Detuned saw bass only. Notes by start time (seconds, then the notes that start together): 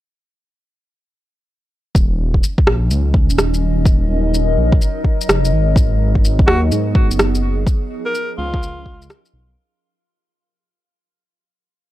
1.95 D#1
2.67 A#1
2.91 C#2
3.30 D#1
4.57 A#1
5.29 F1
5.53 G#1
6.48 D#2
6.72 G#2
7.11 F#1
8.38 C#2
8.62 C#2
9.33 B1